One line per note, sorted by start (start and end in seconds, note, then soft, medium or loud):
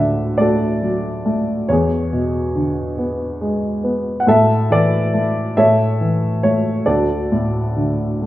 0.00 1.67 D2 soft
0.00 1.23 A2 soft
0.00 1.67 D3 soft
0.00 0.37 A4 soft
0.00 0.38 D5 soft
0.00 0.40 E5 medium
0.00 1.73 F#5 medium
0.38 1.24 A3 soft
0.38 1.67 F#4 soft
0.38 1.68 A4 soft
0.38 1.74 D5 medium
0.83 1.67 F#3 soft
1.25 1.68 A3 soft
1.69 4.23 E2 soft
1.69 3.38 G#4 soft
1.69 3.36 C#5 medium
2.13 3.80 B2 soft
2.55 4.23 D3 soft
2.98 3.82 B3 soft
3.41 4.25 G#3 soft
3.84 4.26 B3 soft
4.20 4.27 F#5 medium
4.27 5.53 A2 medium
4.27 4.70 A4 medium
4.27 4.73 E5 medium
4.70 5.54 E3 soft
4.70 5.54 A4 soft
4.70 5.54 D5 medium
5.14 5.56 A3 soft
5.57 6.84 A2 soft
5.57 6.84 A4 medium
5.57 6.42 C#5 medium
5.57 6.46 E5 medium
6.01 6.85 E3 soft
6.43 6.86 A3 soft
6.43 6.89 C#5 medium
6.86 8.26 D2 soft
6.86 8.26 F#4 soft
6.86 8.26 A4 soft
6.86 8.26 D5 medium
7.32 8.26 A2 soft
7.76 8.26 D3 soft
8.22 8.26 A3 soft